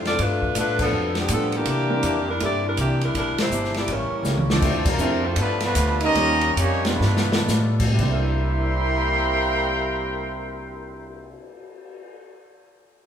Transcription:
Already playing: F2 F3 C4 D4 E4 A4
0.05 C4 F4 A4 D5, snare, ride
0.19 G2 G3 A3 B3 D4 F4 A4 B4, kick, ride
0.42 kick
0.55 A2 G3 A3 B3 D4 F4 A4 B4, kick, hi-hat pedal, ride
0.79 F3 B3 D4 A4, kick, crash
0.91 F2 G3 B3 F4 A4
1.15 F3 B3 D4 G4, snare, ride
1.28 A2 F3 G3 B3 D4 F4 A4, kick, hi-hat pedal, ride
1.52 E3 A#3 D4 G4, ride
1.65 C3 E3 A#3, kick, ride
1.70 D4
1.90 G3 C4 D4 E4 A#4
2.03 F2 C3 E3 A#3 D4, kick, hi-hat pedal, ride
2.29 G3 D4 E4 A#4
2.40 G2 C3 E3 G3 A#3 C4 D4 E4 G4 A4 D5, kick, ride
2.67 G3 D4 E4 A#4
2.77 C2 C3 E3 A#3 D4 G4, kick, hi-hat pedal, ride
3.01 G3 D4 E4 A#4, ride
3.14 A#1 E3 A#3 D4 E4 G4 A#4, kick, ride
3.18 G3
3.38 A#3 E4 G4 C5, muted upright bass stroke, snare, ride
3.50 G1 E3 A#3 D4 G4, hi-hat pedal
3.64 snare
3.74 E4, snare, ride
3.78 A#3 G4 D5
3.88 A1 A2 E3 G3 A#3 C#4 E4 A#4, kick, ride
4.11 muted upright bass stroke
4.23 C#2 A2 G3 A#3 C#4 E4 A4, snare, hi-hat pedal
4.38 mid tom
4.49 F3 A3 C4 D4 F4 A4 D5, snare
4.61 D2 D3 F3 A3 C4 D4 E4 F4 A4, kick, crash
4.85 C3 F3 A#3 C4 D4 A#4, kick, crash
4.97 F2 D3 F3 A3 C4 D4 E4 F4 C5, hi-hat pedal
5.24 F3 A3 C4 D4 F4 C5
5.36 G2 D3 F3 G3 A3 B3 F4 A4, kick, ride
5.40 D4 B4
5.60 D3 F3 B3, snare, ride
5.65 A3 D4 F4 B4
5.75 D2 G3 B3 F4 A4, kick, hi-hat pedal, ride
6.00 G3 A#3 C#4 D#4 G4 D#5, ride
6.04 A#4
6.15 D#2 D#3 G3 A#3 C#4 D#4 F4 G4 A#4, kick, ride
6.41 ride
6.56 F2 D#3 G3 A#3 C#4 G4, kick, hi-hat pedal, ride
6.61 A#3 D#4 C#5
6.85 D3 F3 G3 A3 B3 D4 F4 B4, snare, ride
7.00 G2 G3 B3 F4, snare
7.04 A4
7.17 snare
7.32 snare
7.47 A2 G3 B3 F4 A4, snare, hi-hat pedal
7.80 kick, crash
7.87 C3
7.92 C3 G3
7.97 C2 C3 G3 A#3 E4 G5, kick, crash
8.01 A#3 D4 A#4 E5 C6
8.07 E4
8.12 A#4
8.32 cymbal swell

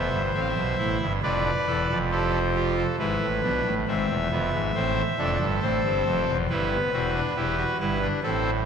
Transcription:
Already playing: B3 C5 E5
0.12 G1 G2
0.34 A1 A2 C4 E5
0.41 F5
0.48 E5
0.56 B1 B2
0.78 A1 A2 E4
1.00 G1 G2
1.23 F1 F2 D4 B4 D5
1.67 E1 E2 A4
1.89 F1 F2
2.11 G4 A4 C5
2.55 F4 G4
2.77 A4
2.99 G#1 G#2 E4 B4
3.21 A1 A2
3.43 B1 B2 D4
3.65 A1 A2
3.87 G#1 G#2 C4 E5
4.09 E1 E2
4.31 F1 F2 B3
4.53 G#1 G#2
4.75 A1 A2 C4 C5
5.18 F1 F2 D4 A4
5.40 G1 G2
5.62 A1 A2 C4 C5
5.83 G1 G2
6.05 F1 F2
6.27 E1 E2
6.50 G1 G2 G3 E4 B4
6.71 B3
6.93 E1 E2 C4 F#4
7.14 D4
7.36 E1 E2 E4 G4
7.58 F#4
7.80 G1 G2 E4 B4
8.02 D4
8.23 A1 A2 C4 A4 C5

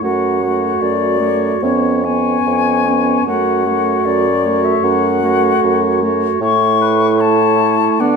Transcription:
0.02 F#2 A3 F#4 C#5 F#5
0.43 A3 F#4 C#5
0.81 F#2 D5
1.20 A3 F#4 C#5
1.62 F2 B3 C#4 C#5
2.05 B3 C#4 C#5 G#5
2.46 F2
2.87 B3 C#4 C#5
3.27 F#2 A3 F#4 C#5 F#5
3.67 A3 F#4 C#5
4.05 F#2 D5
4.45 A3 F#4 C#5
4.65 E5
4.83 F#2 F#5
5.23 A3 F#4 C#5
5.63 F#2
6.02 A3 F#4 C#5
6.41 A2 A3 E4 C#5 C#6
6.81 B4
7.18 C#5 A5
8.00 D3 B3 D4 D5 F#5

